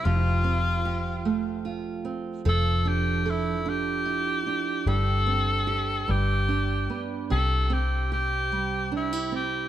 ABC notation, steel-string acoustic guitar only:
X:1
M:6/8
L:1/16
Q:3/8=50
K:C
V:1 name="Steel-string acoustic guitar"
[F,G]2 C2 G2 A,2 F2 C2 | [F,A]2 D2 A2 D2 E2 D2 | [G,,G]2 C2 G2 G,,2 D2 B,2 | [C,G]2 C2 G2 G,2 D E C2 |]